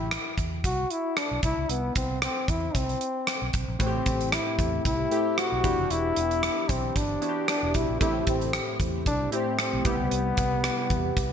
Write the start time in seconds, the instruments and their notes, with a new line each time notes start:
Already playing: fingered electric bass A1, trombone E4
0.11 cross-stick, closed hi-hat
0.38 fingered electric bass E2, kick, closed hi-hat
0.64 fingered electric bass C2, trombone F#4, kick, closed hi-hat
0.90 trombone E4, closed hi-hat
1.17 trombone D4, cross-stick, closed hi-hat
1.31 fingered electric bass B1
1.43 fingered electric bass C2, trombone E4, kick, closed hi-hat
1.58 fingered electric bass C#2
1.69 fingered electric bass C2, trombone B3, closed hi-hat
1.95 fingered electric bass C2, trombone C4, kick, closed hi-hat
2.22 trombone C4, cross-stick, closed hi-hat
2.48 fingered electric bass E2, trombone E4, kick, closed hi-hat
2.75 fingered electric bass C2, trombone C4, kick, closed hi-hat
2.89 closed hi-hat
3.01 closed hi-hat
3.27 cross-stick, closed hi-hat
3.42 fingered electric bass B1
3.53 fingered electric bass B1, kick, closed hi-hat
3.68 fingered electric bass A#1
3.79 fingered electric bass A1, synth keys A2 A3 C4 E4 F#4, trombone C4, kick, closed hi-hat
3.87 synth keys G4
4.06 fingered electric bass A1, kick, closed hi-hat
4.21 closed hi-hat
4.32 trombone E4, cross-stick, closed hi-hat
4.59 fingered electric bass E2, kick, closed hi-hat
4.85 fingered electric bass C2, trombone E4, kick, closed hi-hat
5.11 synth keys A3 C4 E4 G4, closed hi-hat
5.38 trombone F#4, cross-stick, closed hi-hat
5.52 fingered electric bass B1
5.64 synth keys E3 B3 D4 E4 G4, kick, closed hi-hat
5.78 fingered electric bass F1
5.90 fingered electric bass E1, trombone E4, closed hi-hat
6.16 fingered electric bass E1, closed hi-hat
6.31 closed hi-hat
6.43 cross-stick, closed hi-hat
6.69 fingered electric bass B1, trombone C4, kick, closed hi-hat
6.96 fingered electric bass G1, trombone D4, kick, closed hi-hat
7.21 synth keys B3 D4 E4 F#4, closed hi-hat
7.29 synth keys G4
7.48 trombone D4, cross-stick, closed hi-hat
7.63 fingered electric bass E1
7.74 fingered electric bass B1, trombone E4, kick, closed hi-hat
7.89 fingered electric bass A#1
8.00 fingered electric bass A1, synth keys A2 A3 C4 E4 G4, trombone E4, kick, closed hi-hat
8.27 fingered electric bass A1, trombone C4, kick, closed hi-hat
8.41 closed hi-hat
8.53 cross-stick, closed hi-hat
8.80 fingered electric bass E2, kick, closed hi-hat
9.06 fingered electric bass C2, trombone D4, kick, closed hi-hat
9.32 synth keys A3 C4 E4 G4, trombone C4, closed hi-hat
9.59 trombone C4, cross-stick, closed hi-hat
9.73 fingered electric bass B1
9.85 fingered electric bass C2, synth keys C3 G3 B3 E4 G4, trombone B3, kick, closed hi-hat
10.00 fingered electric bass C#2
10.11 fingered electric bass C2, closed hi-hat
10.37 fingered electric bass C2, kick, closed hi-hat
10.64 cross-stick, closed hi-hat
10.90 fingered electric bass E2, kick, closed hi-hat
11.17 fingered electric bass C2, kick, closed hi-hat